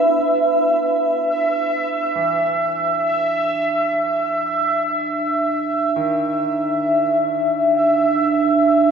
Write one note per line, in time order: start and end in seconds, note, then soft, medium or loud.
0.00 0.11 D4 medium
0.00 0.13 B4 medium
0.00 0.11 E5 medium
0.00 0.12 E5 medium
0.12 8.91 D4 medium
0.12 8.91 E5 medium
2.16 8.91 E3 soft
5.96 8.91 D#3 medium